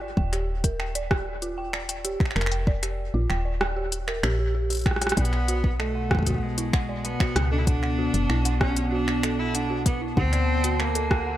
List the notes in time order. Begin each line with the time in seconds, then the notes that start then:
Already playing: G1
0.01 D5
0.17 D#1 G5, kick
0.33 G4, finger snap, closed hi-hat
0.64 A#4, kick, closed hi-hat
0.80 G5, finger snap
0.95 D5, closed hi-hat
1.11 G4, kick, cross-stick
1.42 F4, closed hi-hat
1.58 G5
1.73 D5, finger snap
1.89 G5, closed hi-hat
2.05 G4, closed hi-hat
2.20 finger snap, kick
2.25 finger snap
2.31 finger snap
2.36 F1 A#4, finger snap
2.41 finger snap
2.46 finger snap
2.51 G5, closed hi-hat
2.67 D5, kick
2.83 G4, finger snap, closed hi-hat
3.14 A#1 F4
3.30 D#1 G5, finger snap
3.45 D5
3.61 G5, cross-stick
3.76 G4
3.92 closed hi-hat
4.08 A#4, finger snap
4.23 A#1 G4, finger snap
4.39 G4
4.55 G4
4.70 G4, closed hi-hat
4.73 closed hi-hat
4.75 closed hi-hat
4.77 closed hi-hat
4.79 closed hi-hat
4.81 closed hi-hat
4.84 G5, finger snap, kick, cross-stick, closed hi-hat
4.91 cross-stick
4.96 cross-stick
5.01 G4, cross-stick, closed hi-hat
5.07 cross-stick, closed hi-hat
5.12 cross-stick
5.17 B1 B2 B3 D5, kick, closed hi-hat
5.25 closed hi-hat
5.33 F#5, finger snap
5.48 F#4, closed hi-hat
5.64 kick
5.80 A3 A4, finger snap
5.85 B3
5.95 F#5
6.04 A5
6.11 F#5, kick, cross-stick
6.15 kick
6.19 kick
6.23 F#4, kick
6.26 kick, closed hi-hat
6.30 kick
6.34 kick
6.38 G#3, kick
6.58 E4, closed hi-hat
6.73 F#5, finger snap, kick
6.89 D5
7.05 B3 F#5, closed hi-hat
7.20 F#4, finger snap, kick
7.36 C#2, cross-stick, closed hi-hat
7.51 D4 A4
7.59 E4
7.66 D4 F#5, kick, closed hi-hat
7.83 F#5, finger snap
7.98 F#4
8.14 F#1, closed hi-hat
8.30 B1 E4, finger snap
8.45 F#5, closed hi-hat
8.61 C#4 D5, kick, cross-stick
8.76 F#5, closed hi-hat
8.92 D4 F#4
9.08 finger snap
9.23 A4, finger snap, closed hi-hat
9.39 E4 F#5
9.54 D4 F#5, closed hi-hat
9.70 F#4
9.86 B3, kick, closed hi-hat
10.01 E4
10.17 D2 D3 C4 F#5, kick
10.33 D5, finger snap, closed hi-hat
10.48 F#5
10.64 F#4, closed hi-hat
10.80 A#3, finger snap
10.95 A4, closed hi-hat
11.11 F#5, kick, cross-stick
11.27 F#5